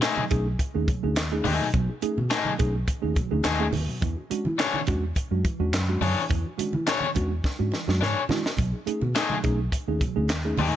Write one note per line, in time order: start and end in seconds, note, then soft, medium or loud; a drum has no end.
0.01 0.21 A3 medium
0.01 0.08 D#4 soft
0.01 0.22 D#4 medium
0.01 0.08 G#4 medium
0.01 0.22 G#4 medium
0.01 snare loud
0.01 clap medium
0.01 closed hi-hat medium
0.17 0.31 B2 medium
0.17 0.31 F#3 medium
0.17 high conga medium
0.31 0.55 B1 medium
0.31 0.46 A3 medium
0.31 0.46 C#4 medium
0.31 0.46 D#4 medium
0.31 0.46 G#4 medium
0.31 kick loud
0.31 closed hi-hat medium
0.31 muted conga soft
0.31 low conga medium
0.59 kick medium
0.59 closed hi-hat medium
0.59 muted conga soft
0.74 0.86 D#2 medium
0.74 0.88 A3 medium
0.74 0.88 C#4 medium
0.74 0.88 D#4 medium
0.74 0.88 G#4 medium
0.88 1.03 B2 medium
0.88 1.03 F#3 medium
0.88 kick medium
0.88 closed hi-hat medium
1.03 1.17 D2 medium
1.03 1.16 A3 medium
1.03 1.17 C#4 medium
1.03 1.17 D#4 medium
1.03 1.17 G#4 medium
1.16 1.40 D#2 medium
1.16 snare loud
1.16 clap medium
1.16 closed hi-hat loud
1.32 1.45 A3 medium
1.32 1.45 C#4 medium
1.32 1.45 D#4 medium
1.32 1.45 G#4 medium
1.44 1.58 D#2 loud
1.44 1.65 A3 medium
1.44 1.66 D#4 loud
1.44 1.66 G#4 medium
1.44 open hi-hat medium
1.44 muted conga soft
1.44 high conga medium
1.44 low conga medium
1.60 1.73 B2 medium
1.60 1.72 F#3 medium
1.74 1.86 B1 loud
1.74 1.89 B2 medium
1.74 1.89 F#3 medium
1.74 kick loud
1.74 closed hi-hat medium
1.74 muted conga soft
1.74 low conga medium
1.89 1.94 D#4 soft
1.89 1.94 G#4 soft
2.02 2.17 A3 medium
2.02 2.17 C#4 medium
2.02 2.17 D#4 medium
2.02 2.18 G#4 medium
2.02 muted fingered electric bass stroke soft
2.02 closed hi-hat medium
2.18 2.28 B2 medium
2.18 high conga medium
2.30 2.50 A3 medium
2.30 2.37 D#4 soft
2.30 2.50 D#4 medium
2.30 2.37 G#4 soft
2.30 2.51 G#4 medium
2.30 snare loud
2.30 clap medium
2.30 closed hi-hat medium
2.30 muted conga soft
2.45 2.59 B2 medium
2.45 2.59 F#3 medium
2.45 high conga medium
2.59 2.83 B1 medium
2.59 2.74 A3 medium
2.59 2.74 C#4 medium
2.59 2.74 D#4 medium
2.59 2.74 G#4 medium
2.59 kick medium
2.59 closed hi-hat medium
2.59 low conga medium
2.87 kick medium
2.87 closed hi-hat medium
2.87 muted conga soft
3.02 3.14 D#2 medium
3.02 3.16 A3 medium
3.02 3.16 C#4 medium
3.02 3.16 D#4 medium
3.02 3.16 G#4 medium
3.16 3.31 B2 medium
3.16 3.31 F#3 medium
3.16 kick loud
3.16 closed hi-hat medium
3.16 muted conga soft
3.31 3.43 D2 loud
3.31 3.45 A3 medium
3.31 3.45 C#4 medium
3.31 3.45 D#4 medium
3.31 3.45 G#4 medium
3.44 3.68 D#2 medium
3.44 3.64 A3 medium
3.44 3.64 D#4 medium
3.44 3.65 G#4 medium
3.44 snare loud
3.44 clap loud
3.44 closed hi-hat medium
3.60 3.73 A3 medium
3.60 3.73 C#4 medium
3.60 3.73 D#4 medium
3.60 3.74 G#4 medium
3.73 3.86 D#2 medium
3.73 open hi-hat medium
3.73 muted conga soft
3.73 high conga medium
3.73 low conga medium
3.88 4.02 B2 medium
3.88 4.02 F#3 medium
4.01 4.14 E2 loud
4.01 4.17 E3 medium
4.01 kick loud
4.01 closed hi-hat medium
4.01 low conga medium
4.16 4.22 D4 soft
4.16 4.22 F#4 soft
4.30 4.45 G#3 medium
4.30 4.46 C#4 medium
4.30 4.46 D4 medium
4.30 4.46 F#4 medium
4.30 muted fingered electric bass stroke soft
4.30 closed hi-hat medium
4.45 4.57 E3 medium
4.45 high conga medium
4.58 4.78 D4 medium
4.58 4.65 D4 soft
4.58 4.65 F#4 medium
4.58 4.78 G#4 loud
4.58 4.79 C#5 medium
4.58 snare loud
4.58 clap medium
4.58 closed hi-hat medium
4.74 4.87 E3 medium
4.74 high conga medium
4.87 5.11 E2 medium
4.87 5.03 G#3 medium
4.87 5.03 C#4 medium
4.87 5.03 D4 medium
4.87 5.03 F#4 medium
4.87 kick medium
4.87 closed hi-hat medium
4.87 muted conga soft
4.87 low conga medium
5.16 kick medium
5.16 closed hi-hat loud
5.31 5.42 F#2 medium
5.31 5.44 G#3 medium
5.31 5.45 C#4 medium
5.31 5.45 D4 medium
5.31 5.45 F#4 medium
5.45 5.60 E3 medium
5.45 kick medium
5.45 closed hi-hat medium
5.60 5.73 E2 medium
5.60 5.73 G#3 medium
5.60 5.73 C#4 medium
5.60 5.73 D4 medium
5.60 5.73 F#4 medium
5.73 5.96 F#2 medium
5.73 snare loud
5.73 clap loud
5.73 closed hi-hat loud
5.73 muted conga soft
5.88 6.02 G#3 medium
5.88 6.02 C#4 medium
5.88 6.02 D4 medium
5.88 6.02 F#4 medium
6.01 6.14 F#2 medium
6.01 6.21 D4 medium
6.01 6.21 G#4 loud
6.01 6.22 C#5 loud
6.01 open hi-hat medium
6.01 high conga medium
6.01 low conga medium
6.17 6.29 E3 medium
6.30 6.43 E2 loud
6.30 6.46 E3 medium
6.30 kick loud
6.30 closed hi-hat medium
6.30 muted conga soft
6.30 low conga medium
6.46 6.51 D4 soft
6.46 6.51 F#4 soft
6.58 6.73 G#3 medium
6.58 6.73 C#4 medium
6.58 6.74 D4 medium
6.58 6.74 F#4 medium
6.58 muted fingered electric bass stroke soft
6.58 closed hi-hat medium
6.58 high conga medium
6.73 6.85 E3 loud
6.73 high conga medium
6.87 7.06 D4 medium
6.87 6.93 D4 soft
6.87 6.93 F#4 soft
6.87 7.07 G#4 medium
6.87 7.08 C#5 medium
6.87 snare loud
6.87 clap loud
6.87 closed hi-hat medium
6.87 muted conga soft
7.01 7.16 E3 medium
7.01 high conga medium
7.15 7.39 E2 medium
7.15 7.31 G#3 medium
7.15 7.31 C#4 medium
7.15 7.31 D4 medium
7.15 7.31 F#4 medium
7.15 kick medium
7.15 closed hi-hat medium
7.15 low conga medium
7.44 kick medium
7.44 snare medium
7.59 7.70 G#2 medium
7.59 7.73 G#3 medium
7.59 7.73 C#4 medium
7.59 7.73 D4 medium
7.59 7.73 F#4 medium
7.72 7.88 E3 medium
7.72 snare medium
7.72 muted conga soft
7.87 7.99 F#2 loud
7.87 8.01 G#3 medium
7.87 8.01 C#4 medium
7.87 8.01 D4 medium
7.87 8.01 F#4 medium
7.87 snare medium
8.01 8.13 G#2 medium
8.01 8.16 E3 medium
8.01 8.20 D4 medium
8.01 8.21 G#4 medium
8.01 8.21 C#5 medium
8.01 snare medium
8.29 8.42 E3 loud
8.29 8.44 G#3 medium
8.29 8.45 C#4 medium
8.29 8.43 D4 medium
8.29 8.43 F#4 medium
8.29 snare loud
8.29 muted conga soft
8.29 high conga medium
8.29 low conga medium
8.44 8.50 D4 soft
8.44 8.50 F#4 soft
8.44 snare loud
8.57 8.71 B1 loud
8.57 8.73 B2 medium
8.57 8.73 F#3 medium
8.57 kick loud
8.57 closed hi-hat medium
8.57 low conga medium
8.73 8.78 D#4 soft
8.73 8.78 G#4 soft
8.86 9.02 A3 medium
8.86 9.02 C#4 medium
8.86 9.02 D#4 medium
8.86 9.02 G#4 medium
8.86 muted fingered electric bass stroke soft
8.86 closed hi-hat medium
9.01 9.13 B2 loud
9.01 high conga medium
9.15 9.34 A3 medium
9.15 9.21 D#4 soft
9.15 9.35 D#4 medium
9.15 9.21 G#4 soft
9.15 9.36 G#4 medium
9.15 snare loud
9.15 clap medium
9.15 closed hi-hat medium
9.30 9.44 B2 medium
9.30 9.44 F#3 medium
9.30 high conga medium
9.43 9.67 B1 medium
9.43 9.59 A3 medium
9.43 9.59 C#4 medium
9.43 9.59 D#4 medium
9.43 9.59 G#4 medium
9.43 kick medium
9.43 closed hi-hat medium
9.43 muted conga soft
9.43 low conga medium
9.72 kick medium
9.72 closed hi-hat loud
9.88 9.99 D#2 medium
9.88 10.01 A3 medium
9.88 10.01 C#4 medium
9.88 10.01 D#4 medium
9.88 10.01 G#4 medium
10.01 10.16 B2 medium
10.01 10.16 F#3 medium
10.01 kick medium
10.01 closed hi-hat medium
10.01 muted conga soft
10.16 10.31 D2 medium
10.16 10.29 A3 medium
10.16 10.29 C#4 medium
10.16 10.29 D#4 medium
10.16 10.29 G#4 medium
10.29 10.53 D#2 medium
10.29 snare loud
10.29 clap medium
10.29 closed hi-hat medium
10.45 10.58 A3 medium
10.45 10.58 C#4 medium
10.45 10.58 D#4 medium
10.45 10.58 G#4 medium
10.57 10.70 D#2 loud
10.57 10.76 A3 medium
10.57 10.76 D#4 loud
10.57 10.76 G#4 loud
10.57 open hi-hat medium
10.57 muted conga soft
10.57 high conga medium
10.57 low conga medium